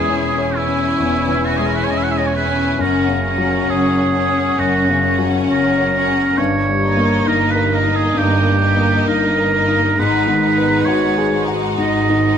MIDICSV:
0, 0, Header, 1, 8, 480
1, 0, Start_track
1, 0, Tempo, 898204
1, 1497, Time_signature, 4, 2, 24, 8
1, 5808, Tempo, 925926
1, 6591, End_track
2, 0, Start_track
2, 0, Title_t, "Violin section"
2, 0, Program_c, 0, 48
2, 0, Note_on_c, 0, 80, 37
2, 282, Note_off_c, 0, 80, 0
2, 300, Note_on_c, 0, 80, 38
2, 767, Note_off_c, 0, 80, 0
2, 784, Note_on_c, 0, 80, 43
2, 1251, Note_off_c, 0, 80, 0
2, 1258, Note_on_c, 0, 80, 40
2, 1494, Note_off_c, 0, 80, 0
2, 1501, Note_on_c, 0, 78, 39
2, 1734, Note_off_c, 0, 78, 0
2, 1745, Note_on_c, 0, 78, 43
2, 2203, Note_off_c, 0, 78, 0
2, 2209, Note_on_c, 0, 78, 40
2, 2680, Note_off_c, 0, 78, 0
2, 2687, Note_on_c, 0, 78, 44
2, 3161, Note_off_c, 0, 78, 0
2, 3177, Note_on_c, 0, 78, 45
2, 3409, Note_off_c, 0, 78, 0
2, 3655, Note_on_c, 0, 75, 45
2, 4117, Note_off_c, 0, 75, 0
2, 4130, Note_on_c, 0, 75, 43
2, 4599, Note_off_c, 0, 75, 0
2, 4610, Note_on_c, 0, 75, 44
2, 5082, Note_off_c, 0, 75, 0
2, 5094, Note_on_c, 0, 75, 42
2, 5325, Note_off_c, 0, 75, 0
2, 5336, Note_on_c, 0, 78, 41
2, 5565, Note_off_c, 0, 78, 0
2, 5571, Note_on_c, 0, 78, 45
2, 6037, Note_off_c, 0, 78, 0
2, 6059, Note_on_c, 0, 78, 43
2, 6524, Note_off_c, 0, 78, 0
2, 6532, Note_on_c, 0, 78, 43
2, 6591, Note_off_c, 0, 78, 0
2, 6591, End_track
3, 0, Start_track
3, 0, Title_t, "Oboe"
3, 0, Program_c, 1, 68
3, 0, Note_on_c, 1, 68, 61
3, 299, Note_on_c, 1, 64, 62
3, 307, Note_off_c, 1, 68, 0
3, 775, Note_on_c, 1, 66, 57
3, 783, Note_off_c, 1, 64, 0
3, 841, Note_on_c, 1, 68, 45
3, 849, Note_off_c, 1, 66, 0
3, 889, Note_on_c, 1, 70, 46
3, 897, Note_off_c, 1, 68, 0
3, 938, Note_on_c, 1, 71, 44
3, 946, Note_off_c, 1, 70, 0
3, 985, Note_on_c, 1, 73, 47
3, 994, Note_off_c, 1, 71, 0
3, 1019, Note_on_c, 1, 75, 46
3, 1027, Note_off_c, 1, 73, 0
3, 1056, Note_on_c, 1, 76, 51
3, 1064, Note_off_c, 1, 75, 0
3, 1086, Note_on_c, 1, 78, 48
3, 1094, Note_off_c, 1, 76, 0
3, 1128, Note_on_c, 1, 76, 45
3, 1136, Note_off_c, 1, 78, 0
3, 1163, Note_on_c, 1, 75, 50
3, 1171, Note_off_c, 1, 76, 0
3, 1213, Note_on_c, 1, 73, 44
3, 1221, Note_off_c, 1, 75, 0
3, 1257, Note_off_c, 1, 73, 0
3, 1261, Note_on_c, 1, 71, 58
3, 1500, Note_on_c, 1, 70, 56
3, 1508, Note_off_c, 1, 71, 0
3, 1980, Note_on_c, 1, 68, 66
3, 1988, Note_off_c, 1, 70, 0
3, 2454, Note_on_c, 1, 66, 69
3, 2462, Note_off_c, 1, 68, 0
3, 2790, Note_off_c, 1, 66, 0
3, 2945, Note_on_c, 1, 70, 71
3, 3408, Note_on_c, 1, 73, 68
3, 3416, Note_off_c, 1, 70, 0
3, 3888, Note_on_c, 1, 70, 69
3, 3896, Note_off_c, 1, 73, 0
3, 4012, Note_on_c, 1, 71, 60
3, 4020, Note_off_c, 1, 70, 0
3, 4136, Note_on_c, 1, 70, 62
3, 4144, Note_off_c, 1, 71, 0
3, 4255, Note_on_c, 1, 68, 61
3, 4263, Note_off_c, 1, 70, 0
3, 4371, Note_on_c, 1, 67, 77
3, 4379, Note_off_c, 1, 68, 0
3, 4849, Note_off_c, 1, 67, 0
3, 4853, Note_on_c, 1, 70, 74
3, 5341, Note_on_c, 1, 71, 67
3, 5349, Note_off_c, 1, 70, 0
3, 5799, Note_on_c, 1, 73, 68
3, 5807, Note_off_c, 1, 71, 0
3, 6136, Note_off_c, 1, 73, 0
3, 6292, Note_on_c, 1, 75, 70
3, 6591, Note_off_c, 1, 75, 0
3, 6591, End_track
4, 0, Start_track
4, 0, Title_t, "Violin section"
4, 0, Program_c, 2, 48
4, 0, Note_on_c, 2, 64, 35
4, 276, Note_off_c, 2, 64, 0
4, 292, Note_on_c, 2, 64, 38
4, 763, Note_off_c, 2, 64, 0
4, 772, Note_on_c, 2, 64, 41
4, 1245, Note_off_c, 2, 64, 0
4, 1254, Note_on_c, 2, 64, 37
4, 1492, Note_off_c, 2, 64, 0
4, 1503, Note_on_c, 2, 61, 43
4, 1734, Note_off_c, 2, 61, 0
4, 1741, Note_on_c, 2, 61, 42
4, 2205, Note_off_c, 2, 61, 0
4, 2217, Note_on_c, 2, 61, 41
4, 2684, Note_off_c, 2, 61, 0
4, 2689, Note_on_c, 2, 61, 45
4, 3163, Note_off_c, 2, 61, 0
4, 3171, Note_on_c, 2, 61, 39
4, 3406, Note_off_c, 2, 61, 0
4, 3644, Note_on_c, 2, 63, 43
4, 4112, Note_off_c, 2, 63, 0
4, 4121, Note_on_c, 2, 63, 45
4, 4594, Note_off_c, 2, 63, 0
4, 4607, Note_on_c, 2, 63, 44
4, 5081, Note_off_c, 2, 63, 0
4, 5103, Note_on_c, 2, 63, 40
4, 5317, Note_off_c, 2, 63, 0
4, 5323, Note_on_c, 2, 63, 46
4, 5558, Note_off_c, 2, 63, 0
4, 5567, Note_on_c, 2, 63, 44
4, 6035, Note_off_c, 2, 63, 0
4, 6044, Note_on_c, 2, 63, 43
4, 6514, Note_off_c, 2, 63, 0
4, 6520, Note_on_c, 2, 63, 43
4, 6591, Note_off_c, 2, 63, 0
4, 6591, End_track
5, 0, Start_track
5, 0, Title_t, "Viola section"
5, 0, Program_c, 3, 48
5, 0, Note_on_c, 3, 61, 38
5, 276, Note_off_c, 3, 61, 0
5, 301, Note_on_c, 3, 61, 39
5, 767, Note_off_c, 3, 61, 0
5, 773, Note_on_c, 3, 61, 40
5, 1246, Note_off_c, 3, 61, 0
5, 1262, Note_on_c, 3, 61, 39
5, 1496, Note_off_c, 3, 61, 0
5, 1503, Note_on_c, 3, 61, 39
5, 1735, Note_off_c, 3, 61, 0
5, 1742, Note_on_c, 3, 61, 42
5, 2206, Note_off_c, 3, 61, 0
5, 2221, Note_on_c, 3, 61, 42
5, 2686, Note_off_c, 3, 61, 0
5, 2701, Note_on_c, 3, 61, 43
5, 3169, Note_off_c, 3, 61, 0
5, 3181, Note_on_c, 3, 61, 42
5, 3411, Note_off_c, 3, 61, 0
5, 3653, Note_on_c, 3, 58, 48
5, 4116, Note_off_c, 3, 58, 0
5, 4130, Note_on_c, 3, 58, 45
5, 4599, Note_off_c, 3, 58, 0
5, 4605, Note_on_c, 3, 58, 46
5, 5080, Note_off_c, 3, 58, 0
5, 5090, Note_on_c, 3, 58, 42
5, 5323, Note_off_c, 3, 58, 0
5, 5333, Note_on_c, 3, 56, 45
5, 5563, Note_off_c, 3, 56, 0
5, 5570, Note_on_c, 3, 56, 42
5, 6036, Note_off_c, 3, 56, 0
5, 6048, Note_on_c, 3, 56, 43
5, 6518, Note_off_c, 3, 56, 0
5, 6533, Note_on_c, 3, 56, 41
5, 6591, Note_off_c, 3, 56, 0
5, 6591, End_track
6, 0, Start_track
6, 0, Title_t, "Grand piano"
6, 0, Program_c, 4, 0
6, 0, Control_c, 4, 64, 127
6, 0, Note_on_c, 4, 40, 47
6, 0, Note_on_c, 4, 52, 39
6, 0, Note_on_c, 4, 56, 40
6, 49, Note_on_c, 4, 61, 38
6, 141, Note_off_c, 4, 56, 0
6, 203, Note_on_c, 4, 73, 38
6, 303, Note_off_c, 4, 61, 0
6, 362, Note_on_c, 4, 61, 38
6, 462, Note_off_c, 4, 73, 0
6, 507, Note_off_c, 4, 40, 0
6, 527, Note_on_c, 4, 40, 41
6, 622, Note_off_c, 4, 61, 0
6, 686, Note_off_c, 4, 52, 0
6, 686, Note_on_c, 4, 52, 38
6, 846, Note_on_c, 4, 56, 40
6, 944, Note_off_c, 4, 52, 0
6, 1004, Note_on_c, 4, 61, 45
6, 1105, Note_off_c, 4, 56, 0
6, 1170, Note_on_c, 4, 73, 41
6, 1267, Note_off_c, 4, 61, 0
6, 1327, Note_on_c, 4, 61, 44
6, 1431, Note_off_c, 4, 73, 0
6, 1475, Note_off_c, 4, 40, 0
6, 1490, Note_on_c, 4, 42, 52
6, 1493, Note_off_c, 4, 61, 0
6, 1505, Control_c, 4, 64, 0
6, 1598, Control_c, 4, 64, 127
6, 1647, Note_on_c, 4, 49, 41
6, 1806, Note_on_c, 4, 54, 43
6, 1907, Note_off_c, 4, 49, 0
6, 1964, Note_on_c, 4, 61, 43
6, 2065, Note_off_c, 4, 54, 0
6, 2125, Note_on_c, 4, 73, 42
6, 2223, Note_off_c, 4, 61, 0
6, 2293, Note_on_c, 4, 61, 45
6, 2383, Note_off_c, 4, 73, 0
6, 2426, Note_off_c, 4, 42, 0
6, 2450, Note_on_c, 4, 42, 47
6, 2548, Note_off_c, 4, 61, 0
6, 2614, Note_on_c, 4, 49, 44
6, 2771, Note_on_c, 4, 54, 46
6, 2870, Note_off_c, 4, 49, 0
6, 2930, Note_on_c, 4, 61, 45
6, 3029, Note_off_c, 4, 54, 0
6, 3090, Note_on_c, 4, 73, 44
6, 3188, Note_off_c, 4, 61, 0
6, 3246, Note_on_c, 4, 61, 44
6, 3347, Note_off_c, 4, 73, 0
6, 3390, Note_off_c, 4, 42, 0
6, 3408, Note_off_c, 4, 61, 0
6, 3408, Note_on_c, 4, 43, 56
6, 3421, Control_c, 4, 64, 0
6, 3505, Control_c, 4, 64, 127
6, 3576, Note_on_c, 4, 55, 44
6, 3724, Note_on_c, 4, 58, 49
6, 3825, Note_off_c, 4, 55, 0
6, 3880, Note_on_c, 4, 63, 48
6, 3979, Note_off_c, 4, 58, 0
6, 4040, Note_on_c, 4, 70, 48
6, 4137, Note_off_c, 4, 63, 0
6, 4190, Note_on_c, 4, 63, 45
6, 4297, Note_off_c, 4, 70, 0
6, 4340, Note_off_c, 4, 43, 0
6, 4352, Note_on_c, 4, 43, 51
6, 4453, Note_off_c, 4, 63, 0
6, 4520, Note_on_c, 4, 55, 41
6, 4684, Note_on_c, 4, 58, 44
6, 4781, Note_off_c, 4, 55, 0
6, 4848, Note_on_c, 4, 63, 49
6, 4944, Note_off_c, 4, 58, 0
6, 5015, Note_on_c, 4, 70, 45
6, 5105, Note_off_c, 4, 63, 0
6, 5173, Note_on_c, 4, 63, 48
6, 5267, Note_off_c, 4, 70, 0
6, 5301, Note_off_c, 4, 43, 0
6, 5330, Note_off_c, 4, 63, 0
6, 5336, Control_c, 4, 64, 0
6, 5340, Note_on_c, 4, 44, 56
6, 5412, Control_c, 4, 64, 127
6, 5491, Note_on_c, 4, 51, 45
6, 5654, Note_on_c, 4, 59, 45
6, 5744, Note_off_c, 4, 51, 0
6, 5814, Note_on_c, 4, 66, 45
6, 5905, Note_off_c, 4, 59, 0
6, 5968, Note_on_c, 4, 68, 47
6, 6063, Note_off_c, 4, 66, 0
6, 6125, Note_on_c, 4, 66, 46
6, 6221, Note_off_c, 4, 68, 0
6, 6269, Note_off_c, 4, 44, 0
6, 6281, Note_on_c, 4, 44, 47
6, 6381, Note_off_c, 4, 66, 0
6, 6445, Note_on_c, 4, 51, 40
6, 6591, Note_off_c, 4, 44, 0
6, 6591, Note_off_c, 4, 51, 0
6, 6591, End_track
7, 0, Start_track
7, 0, Title_t, "Cello section"
7, 0, Program_c, 5, 48
7, 58, Note_on_c, 5, 40, 43
7, 476, Note_off_c, 5, 40, 0
7, 532, Note_on_c, 5, 40, 50
7, 955, Note_off_c, 5, 40, 0
7, 1014, Note_on_c, 5, 40, 47
7, 1442, Note_off_c, 5, 40, 0
7, 1503, Note_on_c, 5, 42, 51
7, 1922, Note_off_c, 5, 42, 0
7, 1980, Note_on_c, 5, 42, 55
7, 2397, Note_off_c, 5, 42, 0
7, 2457, Note_on_c, 5, 42, 61
7, 2879, Note_off_c, 5, 42, 0
7, 2939, Note_on_c, 5, 42, 54
7, 3359, Note_off_c, 5, 42, 0
7, 3414, Note_on_c, 5, 43, 55
7, 3830, Note_off_c, 5, 43, 0
7, 3884, Note_on_c, 5, 43, 56
7, 4306, Note_off_c, 5, 43, 0
7, 4367, Note_on_c, 5, 43, 57
7, 4792, Note_off_c, 5, 43, 0
7, 4849, Note_on_c, 5, 43, 58
7, 5272, Note_off_c, 5, 43, 0
7, 5328, Note_on_c, 5, 44, 56
7, 5749, Note_off_c, 5, 44, 0
7, 5808, Note_on_c, 5, 44, 55
7, 6228, Note_off_c, 5, 44, 0
7, 6284, Note_on_c, 5, 44, 58
7, 6591, Note_off_c, 5, 44, 0
7, 6591, End_track
8, 0, Start_track
8, 0, Title_t, "Double bass section"
8, 0, Program_c, 6, 48
8, 46, Note_on_c, 6, 28, 49
8, 469, Note_off_c, 6, 28, 0
8, 528, Note_on_c, 6, 28, 46
8, 953, Note_off_c, 6, 28, 0
8, 1014, Note_on_c, 6, 28, 49
8, 1441, Note_off_c, 6, 28, 0
8, 1503, Note_on_c, 6, 30, 57
8, 1922, Note_off_c, 6, 30, 0
8, 1977, Note_on_c, 6, 30, 54
8, 2396, Note_off_c, 6, 30, 0
8, 2453, Note_on_c, 6, 30, 50
8, 2877, Note_off_c, 6, 30, 0
8, 2932, Note_on_c, 6, 30, 55
8, 3355, Note_off_c, 6, 30, 0
8, 3407, Note_on_c, 6, 31, 58
8, 3827, Note_off_c, 6, 31, 0
8, 3882, Note_on_c, 6, 31, 60
8, 4305, Note_off_c, 6, 31, 0
8, 4362, Note_on_c, 6, 31, 51
8, 4790, Note_off_c, 6, 31, 0
8, 4845, Note_on_c, 6, 31, 54
8, 5270, Note_off_c, 6, 31, 0
8, 5328, Note_on_c, 6, 32, 55
8, 5749, Note_off_c, 6, 32, 0
8, 5808, Note_on_c, 6, 32, 56
8, 6227, Note_off_c, 6, 32, 0
8, 6282, Note_on_c, 6, 32, 49
8, 6591, Note_off_c, 6, 32, 0
8, 6591, End_track
0, 0, End_of_file